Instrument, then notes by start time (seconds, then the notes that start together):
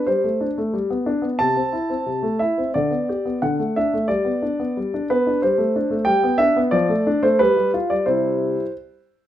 grand piano
0.07 G3 C5
0.24 A3
0.41 D4
0.58 A3
0.73 G3
0.90 B3
1.06 D4
1.22 B3
1.39 C3 A5
1.56 C4
1.72 E4
1.90 C4
2.06 C3
2.23 A3
2.39 E4 E5
2.58 C4
2.74 D3 D5
2.91 B3
3.09 G4
3.25 B3
3.42 D3 F#5
3.59 A3
3.76 D4 E5
3.93 A3
4.08 G3 D5
4.25 B3
4.42 D4
4.59 B3
4.77 G3
4.94 D4
5.10 B3 B4
5.27 D4
5.42 G3 C5
5.58 A3
5.76 D4
5.90 A3
6.05 G3 G5
6.23 B3
6.38 D4 E5
6.56 B3
6.71 F3 D5
6.89 A3
7.07 D4
7.23 A3 C5
7.39 G3 B4
7.57 G3
7.74 F4
7.90 G3 D5
8.06 C3 G3 E4 C5